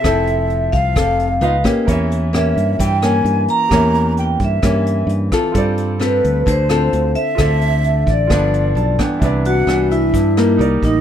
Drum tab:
HH |xxxxxxxx|xxxxxxxx|xxxxxxxx|xxxxxxxx|
SD |r---r--r|--r--r--|r---r--r|--r--r--|
BD |o--oo--o|o---o---|o--oo--o|o---o---|

HH |xxxxxxxx|xxxxxxxx|
SD |r---r--r|--r--r--|
BD |o--oo--o|o---o--o|